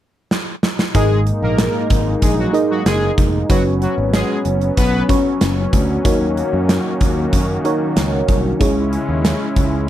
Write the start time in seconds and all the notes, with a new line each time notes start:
0.31 snare
0.63 snare
0.79 snare
0.95 G#1 G#2 G#3 A#3 D#4 G#4 A#4 D#5, kick, closed hi-hat
1.27 closed hi-hat
1.42 A#1 A#3 A#4
1.58 snare, closed hi-hat
1.90 G#1, kick, closed hi-hat
2.22 A#1 G#3 G#4, kick, closed hi-hat
2.39 F#3 F#4
2.53 D#4 G#4 A#4 D#5, closed hi-hat
2.70 F#3 F#4
2.86 F#1 G#3 G#4, snare, closed hi-hat
3.18 F1, kick, closed hi-hat
3.49 F#1 F#3 B3 C#4 F#4 B4 C#5, kick, closed hi-hat
3.82 F#3 F#4, closed hi-hat
3.98 G#1
4.13 G#3 G#4, snare, closed hi-hat
4.45 F#1, closed hi-hat
4.61 closed hi-hat
4.77 B1 B3 B4, kick, closed hi-hat
5.09 C#4 F#4 B4 C#5, kick, closed hi-hat
5.41 F#1, snare, closed hi-hat
5.73 D2, kick, closed hi-hat
6.04 D#2 D#3 A#3 D#4 F#4 A#4 C#5, kick, closed hi-hat
6.37 closed hi-hat
6.53 F#2
6.69 snare, closed hi-hat
7.01 D#2, kick, closed hi-hat
7.33 F#2, kick, closed hi-hat
7.64 D#4 F#4 A#4 C#5, closed hi-hat
7.97 C#2, snare, closed hi-hat
8.28 C2, kick, closed hi-hat
8.60 C#2 C#3 G#3 C#4 E4 G#4 C#5, kick, closed hi-hat
8.93 closed hi-hat
9.09 D#2
9.25 snare, closed hi-hat
9.56 C#2, kick, closed hi-hat